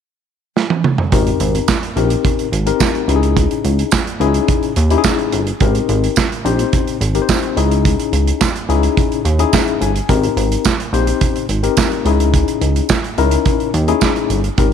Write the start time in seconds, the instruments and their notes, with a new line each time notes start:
0.57 snare
0.70 high tom
0.84 mid tom
0.98 floor tom
1.12 analog synth bass G#1, tine electric piano C4 D#4 G4 A#4, kick, closed hi-hat
1.27 closed hi-hat
1.40 analog synth bass G#1, closed hi-hat
1.55 closed hi-hat
1.68 kick, snare, clap, tambourine
1.83 closed hi-hat
1.96 analog synth bass A#1, tine electric piano C4 D#4 G4 A#4, closed hi-hat
2.10 closed hi-hat
2.25 kick, closed hi-hat
2.39 closed hi-hat
2.52 analog synth bass G#1, closed hi-hat
2.66 tine electric piano C4 D#4 G4 A#4, closed hi-hat
2.80 kick, snare, clap, tambourine
2.95 closed hi-hat
3.08 analog synth bass C#2, tine electric piano C#4 D#4 E4 G4, closed hi-hat
3.16 tine electric piano G#4
3.23 closed hi-hat
3.37 kick, closed hi-hat
3.51 closed hi-hat
3.64 analog synth bass C#2, closed hi-hat
3.79 closed hi-hat
3.91 kick, snare, clap, tambourine
4.07 closed hi-hat
4.20 analog synth bass C#2, tine electric piano C#4 D#4 E4 G#4, closed hi-hat
4.34 closed hi-hat
4.48 kick, closed hi-hat
4.63 closed hi-hat
4.76 analog synth bass D#2, closed hi-hat
4.90 tine electric piano C#4 D#4 E4 G4, closed hi-hat
4.98 tine electric piano G#4
5.04 kick, snare, clap, tambourine
5.19 closed hi-hat
5.32 analog synth bass G1, closed hi-hat
5.47 closed hi-hat
5.60 analog synth bass G#1, tine electric piano C4 D#4 G4 A#4, kick, closed hi-hat
5.75 closed hi-hat
5.89 analog synth bass G#1, closed hi-hat
6.04 closed hi-hat
6.16 kick, snare, clap, tambourine
6.32 closed hi-hat
6.45 analog synth bass A#1, tine electric piano C4 D#4 G4 C5, closed hi-hat
6.59 closed hi-hat
6.73 kick, closed hi-hat
6.87 closed hi-hat
7.00 analog synth bass G#1, closed hi-hat
7.15 tine electric piano C4 D#4 G4 A#4, closed hi-hat
7.22 tine electric piano C5
7.29 kick, snare, clap, tambourine
7.43 closed hi-hat
7.57 analog synth bass C#2, tine electric piano C#4 D#4 E4 G#4, closed hi-hat
7.71 closed hi-hat
7.85 kick, closed hi-hat
8.00 closed hi-hat
8.13 analog synth bass C#2, closed hi-hat
8.27 closed hi-hat
8.41 kick, snare, clap, tambourine
8.56 closed hi-hat
8.69 analog synth bass C#2, tine electric piano C#4 D#4 E4 G#4, closed hi-hat
8.83 closed hi-hat
8.97 kick, closed hi-hat
9.12 closed hi-hat
9.25 analog synth bass D#2, closed hi-hat
9.39 tine electric piano C#4 D#4 E4 G#4, closed hi-hat
9.53 tine electric piano E5, kick, snare, clap, tambourine
9.68 closed hi-hat
9.81 analog synth bass G1, tine electric piano G#5, closed hi-hat
9.96 closed hi-hat
10.09 analog synth bass G#1, tine electric piano C4 D#4 G4 A#4, kick, closed hi-hat
10.23 closed hi-hat
10.37 analog synth bass G#1, closed hi-hat
10.52 closed hi-hat
10.65 kick, snare, clap, tambourine
10.80 closed hi-hat
10.93 analog synth bass A#1, tine electric piano C4 D#4 G4 C5, closed hi-hat
11.07 closed hi-hat
11.21 kick, closed hi-hat
11.36 closed hi-hat
11.49 analog synth bass G#1, closed hi-hat
11.63 tine electric piano C4 D#4 G4 A#4, closed hi-hat
11.77 kick, snare, clap, tambourine
11.92 closed hi-hat
12.05 analog synth bass C#2, tine electric piano C#4 D#4 E4 G#4, closed hi-hat
12.20 closed hi-hat
12.34 kick, closed hi-hat
12.48 closed hi-hat
12.61 analog synth bass C#2, closed hi-hat
12.76 closed hi-hat
12.89 kick, snare, clap, tambourine
13.04 closed hi-hat
13.18 analog synth bass C#2, tine electric piano C#4 D#4 E4 A#4, closed hi-hat
13.31 closed hi-hat
13.46 kick, closed hi-hat
13.60 closed hi-hat
13.74 analog synth bass D#2, closed hi-hat
13.88 tine electric piano C#4 D#4 E4 G#4, closed hi-hat
14.01 kick, snare, clap, tambourine
14.16 closed hi-hat
14.30 analog synth bass G1, closed hi-hat
14.44 closed hi-hat
14.58 analog synth bass G#1, tine electric piano C4 D#4 G4 A#4, kick, closed hi-hat